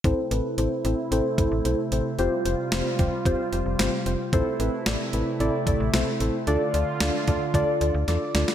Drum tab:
HH |x-x-x-x-x-x-x-x-|x-x-x-x-x-x-x-x-|x-x-x-x-x-x-x-x-|x-x-x-x-x-x-x-x-|
SD |----------------|----o-------o---|----o-------o---|----o-------o-oo|
BD |o---------o-----|------o-o-------|o---------o-----|------o-o-------|